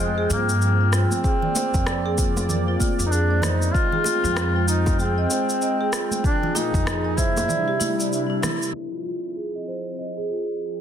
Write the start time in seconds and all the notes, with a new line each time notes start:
Already playing: F2 F3 C4 G#4 G5
0.00 G#3 D#5, shaker
0.18 G#4
0.30 G2 A#3 F4, high bongo, shaker
0.49 shaker
0.62 shaker
0.81 F4
0.93 C4 F4, cross-stick, shaker
1.11 high conga, shaker
1.24 A#3 G#4 D5, kick, shaker
1.42 D5, low conga
1.55 C5, high bongo, high conga, shaker
1.74 F2, kick, shaker
1.87 D5, cross-stick, shaker
2.06 G#4
2.18 F4, kick, shaker
2.36 high bongo, high conga, shaker
2.49 low conga, shaker
2.68 F4
2.80 F4, kick, high conga, shaker
2.99 F2, shaker
3.06 D#4
3.10 D4 G#4, shaker
3.31 D5
3.42 D#4 C5, cross-stick, high bongo, high conga, low conga, shaker
3.62 shaker
3.73 G#3 C4 F4 D#5 G5, kick, shaker
3.92 G#4, low conga
4.04 F4, high bongo, high conga, shaker
4.24 F2, shaker
4.37 cross-stick, shaker
4.56 F4
4.67 D#4 F4, shaker
4.86 kick, high bongo, high conga, shaker
4.99 C4 G#4, shaker
5.18 D#5
5.30 C5, high bongo, shaker
5.50 shaker
5.62 D#5, shaker
5.81 G#4
5.93 F4, cross-stick, shaker
6.11 high conga, shaker
6.24 A#2 F3 A#3 D4 G#4, kick, shaker
6.43 F4, low conga
6.55 D#4 F4, high bongo, high conga, shaker
6.74 F2, kick, shaker
6.86 G#4, cross-stick, shaker
7.04 D#5
7.17 E4 C5, kick, shaker
7.36 high bongo, high conga, shaker
7.48 C3 G3 D4 E4 D5, low conga, shaker
7.68 G4
7.80 E4, high conga, shaker
7.99 D5, shaker
8.13 shaker
8.30 E4
8.42 E4, cross-stick, high bongo, high conga, low conga, shaker
8.62 shaker
8.75 F3 C4 G#4 G5
8.92 F4
9.05 F4
9.36 G#4
9.55 D#5
9.68 C5
9.99 D#5
10.17 G#4
10.30 F4